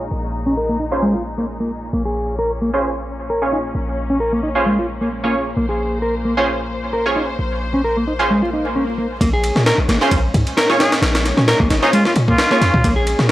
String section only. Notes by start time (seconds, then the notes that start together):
Already playing: A#2 G#3 D#4
1.93 A#3 C#4
5.57 C5
9.21 A#2 G#3 C#4